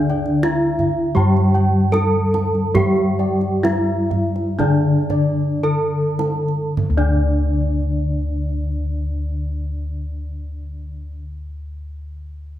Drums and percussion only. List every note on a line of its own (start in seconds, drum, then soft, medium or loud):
0.10 kendang slap soft
0.26 kendang slap soft
0.43 kendang high medium
0.79 kendang slap soft
0.79 kendang low soft
1.16 kendang low medium
1.37 kendang slap soft
1.55 kendang slap soft
1.94 kendang slap soft
1.94 kendang high medium
2.34 kendang high soft
2.55 kendang slap soft
2.75 kendang high medium
2.75 kendang low medium
2.96 kendang slap soft
3.19 kendang slap soft
3.41 kendang slap soft
3.65 kendang high medium
4.11 kendang slap soft
4.11 kendang low medium
4.36 kendang slap soft
4.59 kendang low medium
5.10 kendang slap soft
5.10 kendang low medium
5.64 kendang slap soft
6.19 kendang slap soft
6.19 kendang high medium
6.48 kendang slap soft
6.77 kendang low medium